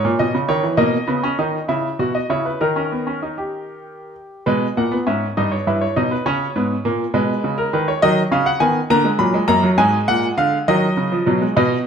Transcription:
0.05 A#2
0.19 B2 D#5
0.35 C#3
0.49 D#3 C#5
0.63 E3
0.77 B2 A#3 D#5
1.07 C#3 B3
1.23 C#4
1.39 D#3 D#4
1.68 C#3 E4 E5
1.99 B2 F#4
2.15 D#5
2.30 C#3 E4 C#5
2.45 B4
2.61 D#3 D#4 A#4
2.76 C#4
2.92 B3
3.07 C#4
3.22 D#4
3.38 G4
4.46 B2 G#3 B4
4.77 A#2 A#3 F#5
4.92 B3
5.07 G#2 C#4 E5
5.37 G2 D#4 D#5
5.52 C#5
5.67 G2 E4 B4
5.81 C#5
5.96 B2 D#4 D#5
6.11 B4
6.26 C#3 C#4 C#5
6.56 G#2 B3
6.85 A#2 A#3
7.14 B2 G#3 B4
7.44 C#3
7.58 A#4
7.73 D#3 B4
7.88 C#5
8.02 D#3 F#3 D#5
8.32 C#3 C#4 F5
8.46 F#5
8.60 D#3 B3 G#5
8.90 D3 A#3 A#5
9.04 G#3
9.19 A#2 F#3 B5
9.34 G#3
9.48 F#2 A#3 A#5
9.63 F#3
9.78 G#2 G#3 G#5
10.08 A#2 F#5
10.38 D3 F5
10.68 D#3 F#3 D#5
10.97 C#3
11.12 F3
11.26 B2 F#3
11.41 G#3
11.56 B2 B3 D#5

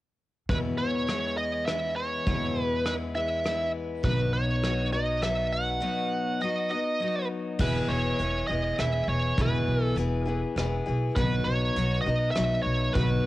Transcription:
0.49 E2 B2 E3 G#3 B3 E4 B4, kick
0.78 C#5
1.07 E3 G#3 B3, cross-stick
1.11 E4
1.37 D#5
1.66 E3 G#3 E5, cross-stick
1.70 B3 E4
1.96 C#5
2.26 E2 B2 E3 G#3 B3 E4, kick
2.62 B4
2.86 E3 G#3 B3 E4 B4, cross-stick
3.15 E3 G#3 B3 E4 E5
3.44 E3 G#3 B3 E4, cross-stick
4.03 B1 B2 F#3 B3 D#4 F#4 B4, kick
4.33 C#5
4.62 F#3 B3 D#4 F#4, cross-stick
4.92 B3 D#4 F#4 D#5
5.22 F#3 B3 D#4 F#4 E5, cross-stick
5.53 F#5
5.80 B2 F#3 B3 D#4 F#4
6.41 F#3 B3 D#4 F#4 D#5
6.70 B3 D#4 F#4 D#5
7.00 F#3 B3 D#4 F#4
7.59 E1 E2 B2 E3 B3 E4 G#4 B4, kick, crash
7.89 E1 C#5
8.19 E1 E3 B3 E4, closed hi-hat
8.23 G#4
8.47 E1 E4 G#4 D#5
8.52 E3 B3
8.78 E1 E3 B3 E4 G#4 E5, cross-stick, closed hi-hat
9.08 E1 C#5
9.38 E1 E2 B2 E3 B3 E4 G#4 B4, kick, closed hi-hat
9.68 B1
9.83 A4
9.96 E1 E3 B3 E4 G#4, closed hi-hat
10.26 E3 B3 E4 G#4
10.56 E1 E3 B3 E4 G#4, cross-stick, closed hi-hat
10.86 B1 E3 B3 E4 G#4
11.16 B1 B2 F#3 B3 D#4 F#4 B4, kick, closed hi-hat
11.44 B1 C#5
11.76 B1 F#3 B3 D#4 F#4, closed hi-hat
12.01 D#5
12.06 B1 B3 D#4 F#4
12.31 E5
12.35 B1 F#3 B3 D#4 F#4, cross-stick, closed hi-hat
12.63 B1 C#5
12.93 B1 B2 F#3 B3 D#4 F#4 B4, kick, closed hi-hat

